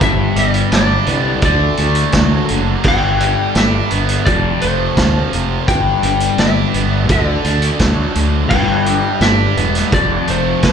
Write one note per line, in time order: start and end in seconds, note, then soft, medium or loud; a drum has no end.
0.00 0.26 G1 medium
0.00 0.36 G2 medium
0.00 0.36 D3 medium
0.00 0.37 G3 medium
0.00 0.36 B3 medium
0.00 0.35 D4 medium
0.00 0.35 B4 medium
0.00 0.39 E5 loud
0.00 kick loud
0.00 closed hi-hat medium
0.36 0.61 G1 medium
0.36 0.71 G3 soft
0.36 0.73 B3 soft
0.36 0.72 D4 medium
0.36 0.72 B4 medium
0.36 0.71 D5 medium
0.36 closed hi-hat medium
0.54 closed hi-hat medium
0.71 0.97 G1 medium
0.71 1.08 G2 medium
0.71 1.08 D3 medium
0.71 1.08 G3 medium
0.71 1.08 B3 medium
0.71 1.08 D4 medium
0.71 1.06 B4 medium
0.71 1.44 D5 medium
0.71 snare loud
0.71 closed hi-hat medium
1.06 1.32 C2 medium
1.06 1.43 G3 soft
1.06 1.44 B3 soft
1.06 1.43 D4 medium
1.06 1.43 B4 medium
1.06 closed hi-hat medium
1.42 1.68 D2 medium
1.42 2.49 D3 medium
1.42 1.79 A3 soft
1.42 1.79 D4 medium
1.42 1.80 F#4 medium
1.42 2.46 D5 medium
1.42 kick loud
1.42 closed hi-hat medium
1.46 1.78 A4 medium
1.77 2.03 D2 medium
1.77 2.84 A3 medium
1.77 2.13 A4 medium
1.77 closed hi-hat medium
1.81 2.12 D4 soft
1.81 2.13 F#4 medium
1.95 closed hi-hat medium
2.12 2.38 D2 loud
2.12 2.49 D3 medium
2.12 2.85 F#3 medium
2.12 2.49 A3 medium
2.12 2.49 D4 medium
2.12 2.49 F#4 medium
2.12 2.48 A4 medium
2.12 kick medium
2.12 snare loud
2.12 closed hi-hat medium
2.49 2.75 F#1 medium
2.49 2.85 D3 medium
2.49 2.85 D4 soft
2.49 2.86 F#4 medium
2.49 2.85 A4 medium
2.49 closed hi-hat medium
2.84 3.34 G1 medium
2.84 3.20 G2 medium
2.84 3.20 D3 medium
2.84 3.21 G3 medium
2.84 3.21 B3 medium
2.84 3.20 D4 medium
2.84 3.19 B4 medium
2.84 kick loud
2.84 crash medium
2.88 3.59 G5 loud
3.20 3.54 G3 soft
3.20 3.55 B3 soft
3.20 3.55 D4 soft
3.20 3.55 B4 soft
3.20 closed hi-hat medium
3.55 3.80 G1 loud
3.55 3.91 G2 medium
3.55 3.91 D3 medium
3.55 3.91 G3 medium
3.55 3.91 B3 medium
3.55 3.91 D4 medium
3.55 3.90 B4 medium
3.55 4.25 E5 medium
3.55 snare loud
3.55 closed hi-hat medium
3.91 4.16 G1 medium
3.91 4.25 G3 soft
3.91 4.27 B3 soft
3.91 4.27 D4 soft
3.91 4.27 B4 medium
3.91 closed hi-hat medium
4.09 closed hi-hat medium
4.25 4.51 F1 medium
4.25 5.67 F2 medium
4.25 5.67 C3 medium
4.25 4.61 F3 medium
4.25 4.62 C4 medium
4.25 4.62 F4 medium
4.25 4.61 A4 medium
4.25 4.62 D5 medium
4.25 kick loud
4.25 closed hi-hat medium
4.60 4.87 F1 medium
4.60 5.67 A3 medium
4.60 4.96 C4 soft
4.60 4.97 F4 medium
4.60 4.97 A4 medium
4.60 5.28 C5 medium
4.60 closed hi-hat medium
4.97 5.22 D2 medium
4.97 5.32 F3 medium
4.97 5.33 C4 medium
4.97 5.33 F4 medium
4.97 5.32 A4 medium
4.97 kick medium
4.97 snare loud
4.97 closed hi-hat medium
5.31 5.58 F1 medium
5.31 5.67 C3 medium
5.31 5.69 C4 soft
5.31 5.69 F4 soft
5.31 5.68 A4 soft
5.31 closed hi-hat medium
5.68 5.92 G1 medium
5.68 6.03 G2 medium
5.68 6.04 D3 medium
5.68 6.04 G3 medium
5.68 6.04 B3 medium
5.68 6.04 D4 medium
5.68 6.03 B4 medium
5.68 6.41 G5 loud
5.68 kick loud
5.68 closed hi-hat medium
6.02 6.28 G1 medium
6.02 7.09 G3 medium
6.02 6.39 B3 soft
6.02 6.39 D4 soft
6.02 6.39 B4 medium
6.02 closed hi-hat medium
6.07 6.38 G3 soft
6.20 closed hi-hat medium
6.38 6.63 G1 medium
6.38 6.74 G2 medium
6.38 6.75 D3 medium
6.38 6.74 G3 medium
6.38 6.75 B3 medium
6.38 6.75 D4 medium
6.38 6.74 B4 medium
6.38 7.12 E5 medium
6.38 snare loud
6.38 closed hi-hat medium
6.74 7.10 G1 medium
6.74 7.10 B3 soft
6.74 7.09 D4 medium
6.74 7.10 B4 medium
6.74 closed hi-hat medium
6.78 7.09 G3 soft
7.08 7.34 D2 medium
7.08 8.16 D3 medium
7.08 7.45 A3 medium
7.08 7.45 D4 medium
7.08 7.46 F#4 medium
7.08 8.13 D5 medium
7.08 kick loud
7.08 closed hi-hat medium
7.12 7.45 A4 medium
7.44 7.69 D2 medium
7.44 8.51 A3 medium
7.44 7.82 F#4 soft
7.44 7.81 A4 medium
7.44 closed hi-hat medium
7.50 7.82 D4 soft
7.62 closed hi-hat medium
7.79 8.04 D2 medium
7.79 8.17 D3 medium
7.79 8.51 F#3 medium
7.79 8.17 A3 medium
7.79 kick medium
7.79 snare loud
7.79 closed hi-hat medium
7.84 8.17 D4 medium
7.84 8.16 F#4 medium
7.84 8.15 A4 medium
8.15 8.51 D2 medium
8.15 8.51 D3 medium
8.15 8.52 D4 soft
8.15 8.52 F#4 medium
8.15 8.51 A4 medium
8.15 closed hi-hat medium
8.50 9.01 G1 medium
8.50 8.87 G2 medium
8.50 8.88 D3 medium
8.50 8.88 G3 medium
8.50 9.23 G5 loud
8.50 kick loud
8.50 crash medium
8.54 8.88 B3 medium
8.54 8.88 D4 medium
8.54 8.86 B4 medium
8.86 9.23 B3 soft
8.86 9.23 D4 soft
8.86 9.22 B4 soft
8.86 closed hi-hat medium
8.90 9.22 G3 soft
9.21 9.46 G1 medium
9.21 9.58 G2 medium
9.21 9.58 D3 medium
9.21 9.58 G3 medium
9.21 9.56 B4 medium
9.21 9.89 E5 medium
9.21 snare loud
9.21 closed hi-hat medium
9.25 9.58 B3 medium
9.25 9.57 D4 medium
9.56 9.81 E1 medium
9.56 9.92 G3 soft
9.56 9.93 B3 soft
9.56 9.93 D4 medium
9.56 9.92 B4 medium
9.56 closed hi-hat medium
9.75 snare soft
9.75 closed hi-hat medium
9.92 10.17 F1 medium
9.92 10.72 F2 medium
9.92 10.72 C3 medium
9.92 10.28 F3 medium
9.92 10.29 C4 medium
9.92 10.29 F4 medium
9.92 10.28 A4 medium
9.92 10.30 D5 medium
9.92 kick loud
9.92 closed hi-hat medium
10.28 10.53 F1 medium
10.28 10.72 A3 medium
10.28 10.62 C4 soft
10.28 10.63 F4 medium
10.28 10.63 A4 medium
10.28 10.62 C5 medium
10.28 closed hi-hat medium
10.63 10.72 D2 medium
10.63 10.72 F3 medium
10.63 10.72 C4 medium
10.63 10.72 F4 medium
10.63 10.72 A4 medium
10.63 10.72 C5 medium
10.63 kick medium
10.63 snare loud
10.63 closed hi-hat medium